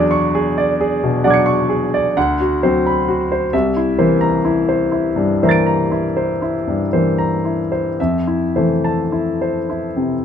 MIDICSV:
0, 0, Header, 1, 2, 480
1, 0, Start_track
1, 0, Tempo, 909091
1, 1864, Time_signature, 9, 3, 24, 8
1, 2106, Tempo, 960000
1, 3066, Tempo, 988468
1, 3546, Tempo, 1083032
1, 4026, Tempo, 1123596
1, 4995, End_track
2, 0, Start_track
2, 0, Title_t, "Grand piano"
2, 0, Program_c, 0, 0
2, 0, Control_c, 0, 64, 127
2, 0, Note_on_c, 0, 40, 62
2, 0, Note_on_c, 0, 54, 43
2, 0, Note_on_c, 0, 62, 50
2, 0, Note_on_c, 0, 68, 50
2, 0, Note_on_c, 0, 74, 51
2, 0, Note_on_c, 0, 80, 59
2, 57, Note_on_c, 0, 85, 51
2, 132, Note_off_c, 0, 74, 0
2, 183, Note_off_c, 0, 68, 0
2, 183, Note_on_c, 0, 68, 48
2, 254, Note_off_c, 0, 85, 0
2, 305, Note_on_c, 0, 74, 49
2, 376, Note_off_c, 0, 68, 0
2, 425, Note_on_c, 0, 68, 52
2, 494, Note_off_c, 0, 74, 0
2, 545, Note_on_c, 0, 47, 50
2, 612, Note_off_c, 0, 68, 0
2, 632, Note_off_c, 0, 62, 0
2, 633, Note_off_c, 0, 54, 0
2, 656, Note_on_c, 0, 74, 46
2, 656, Note_on_c, 0, 78, 38
2, 657, Note_on_c, 0, 54, 41
2, 660, Note_on_c, 0, 62, 36
2, 674, Note_on_c, 0, 86, 34
2, 688, Note_on_c, 0, 92, 32
2, 706, Note_on_c, 0, 97, 33
2, 731, Note_off_c, 0, 47, 0
2, 770, Note_on_c, 0, 85, 47
2, 847, Note_off_c, 0, 74, 0
2, 893, Note_on_c, 0, 68, 42
2, 966, Note_off_c, 0, 85, 0
2, 1025, Note_on_c, 0, 74, 52
2, 1091, Note_off_c, 0, 68, 0
2, 1120, Note_off_c, 0, 54, 0
2, 1120, Note_off_c, 0, 78, 0
2, 1122, Note_off_c, 0, 62, 0
2, 1128, Note_off_c, 0, 86, 0
2, 1135, Note_off_c, 0, 92, 0
2, 1144, Note_off_c, 0, 97, 0
2, 1145, Note_off_c, 0, 74, 0
2, 1146, Note_on_c, 0, 38, 52
2, 1146, Note_on_c, 0, 78, 53
2, 1152, Control_c, 0, 64, 0
2, 1156, Note_off_c, 0, 40, 0
2, 1157, Note_off_c, 0, 80, 0
2, 1243, Control_c, 0, 64, 127
2, 1269, Note_on_c, 0, 66, 49
2, 1341, Note_off_c, 0, 78, 0
2, 1383, Note_off_c, 0, 38, 0
2, 1390, Note_on_c, 0, 54, 42
2, 1390, Note_on_c, 0, 72, 48
2, 1396, Note_on_c, 0, 60, 41
2, 1463, Note_off_c, 0, 66, 0
2, 1513, Note_on_c, 0, 83, 49
2, 1581, Note_off_c, 0, 72, 0
2, 1627, Note_on_c, 0, 66, 45
2, 1700, Note_off_c, 0, 83, 0
2, 1751, Note_on_c, 0, 72, 41
2, 1816, Note_off_c, 0, 66, 0
2, 1843, Note_off_c, 0, 54, 0
2, 1846, Note_off_c, 0, 60, 0
2, 1864, Note_on_c, 0, 36, 53
2, 1865, Note_on_c, 0, 76, 50
2, 1867, Note_off_c, 0, 72, 0
2, 1871, Control_c, 0, 64, 0
2, 1960, Control_c, 0, 64, 127
2, 1988, Note_on_c, 0, 64, 45
2, 2058, Note_off_c, 0, 76, 0
2, 2099, Note_off_c, 0, 36, 0
2, 2104, Note_on_c, 0, 72, 46
2, 2106, Note_on_c, 0, 52, 42
2, 2106, Note_on_c, 0, 58, 40
2, 2179, Note_off_c, 0, 64, 0
2, 2216, Note_on_c, 0, 82, 47
2, 2294, Note_off_c, 0, 72, 0
2, 2336, Note_on_c, 0, 64, 43
2, 2412, Note_off_c, 0, 82, 0
2, 2455, Note_on_c, 0, 72, 45
2, 2532, Note_off_c, 0, 64, 0
2, 2571, Note_on_c, 0, 64, 42
2, 2653, Note_off_c, 0, 72, 0
2, 2692, Note_on_c, 0, 43, 45
2, 2771, Note_off_c, 0, 64, 0
2, 2806, Note_off_c, 0, 52, 0
2, 2806, Note_off_c, 0, 58, 0
2, 2826, Note_on_c, 0, 52, 33
2, 2827, Note_on_c, 0, 72, 39
2, 2827, Note_on_c, 0, 76, 29
2, 2829, Note_on_c, 0, 58, 35
2, 2837, Note_on_c, 0, 82, 28
2, 2856, Note_on_c, 0, 93, 29
2, 2868, Note_on_c, 0, 98, 29
2, 2891, Note_off_c, 0, 43, 0
2, 2936, Note_off_c, 0, 82, 0
2, 2944, Note_on_c, 0, 82, 42
2, 3019, Note_off_c, 0, 72, 0
2, 3070, Note_on_c, 0, 64, 41
2, 3135, Note_off_c, 0, 82, 0
2, 3191, Note_on_c, 0, 72, 41
2, 3256, Note_off_c, 0, 64, 0
2, 3315, Note_on_c, 0, 64, 39
2, 3378, Note_off_c, 0, 72, 0
2, 3438, Note_on_c, 0, 43, 41
2, 3503, Note_off_c, 0, 64, 0
2, 3526, Note_off_c, 0, 52, 0
2, 3528, Note_off_c, 0, 58, 0
2, 3561, Note_on_c, 0, 72, 39
2, 3562, Note_on_c, 0, 52, 35
2, 3564, Note_on_c, 0, 58, 33
2, 3622, Note_off_c, 0, 43, 0
2, 3673, Note_on_c, 0, 82, 40
2, 3740, Note_off_c, 0, 72, 0
2, 3792, Note_on_c, 0, 64, 32
2, 3859, Note_off_c, 0, 82, 0
2, 3910, Note_on_c, 0, 72, 35
2, 3982, Note_off_c, 0, 64, 0
2, 4008, Note_off_c, 0, 76, 0
2, 4016, Note_off_c, 0, 52, 0
2, 4017, Note_off_c, 0, 58, 0
2, 4021, Note_off_c, 0, 93, 0
2, 4026, Note_off_c, 0, 98, 0
2, 4029, Note_off_c, 0, 72, 0
2, 4033, Control_c, 0, 64, 0
2, 4035, Note_on_c, 0, 76, 42
2, 4038, Note_on_c, 0, 41, 40
2, 4103, Control_c, 0, 64, 127
2, 4151, Note_on_c, 0, 64, 36
2, 4222, Note_off_c, 0, 76, 0
2, 4264, Note_off_c, 0, 41, 0
2, 4273, Note_on_c, 0, 72, 35
2, 4275, Note_on_c, 0, 57, 34
2, 4276, Note_on_c, 0, 52, 34
2, 4339, Note_off_c, 0, 64, 0
2, 4395, Note_on_c, 0, 81, 37
2, 4460, Note_off_c, 0, 72, 0
2, 4514, Note_on_c, 0, 64, 34
2, 4582, Note_off_c, 0, 81, 0
2, 4639, Note_on_c, 0, 72, 35
2, 4702, Note_off_c, 0, 64, 0
2, 4759, Note_on_c, 0, 64, 33
2, 4825, Note_off_c, 0, 72, 0
2, 4875, Note_on_c, 0, 48, 37
2, 4944, Note_off_c, 0, 64, 0
2, 4973, Note_off_c, 0, 52, 0
2, 4973, Note_off_c, 0, 57, 0
2, 4995, Note_off_c, 0, 48, 0
2, 4995, End_track
0, 0, End_of_file